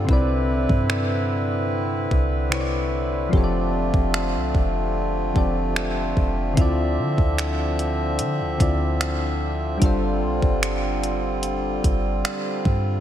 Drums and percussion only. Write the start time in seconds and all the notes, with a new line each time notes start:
0.09 kick
0.69 kick
0.90 finger snap
2.11 kick
2.52 finger snap
3.33 kick
3.94 kick
4.14 finger snap
4.55 kick
5.36 kick
5.76 finger snap
6.17 kick
6.57 kick, closed hi-hat
7.18 kick
7.38 finger snap, closed hi-hat
7.79 closed hi-hat
8.19 closed hi-hat
8.60 kick, closed hi-hat
9.01 finger snap, closed hi-hat
9.82 kick, closed hi-hat
10.43 kick
10.63 finger snap, closed hi-hat
11.04 closed hi-hat
11.43 closed hi-hat
11.84 kick, closed hi-hat
12.25 finger snap, closed hi-hat
12.65 kick